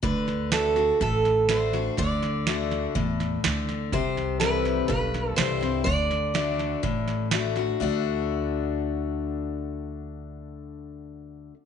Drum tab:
HH |--p---p-|--p---p-|--p---p-|--p---p-|
SD |oooooooo|oooooooo|oooooooo|oooooooo|
BD |o---o---|o---o---|o---o---|o---o---|

HH |--------|--------|
SD |--------|--------|
BD |--------|--------|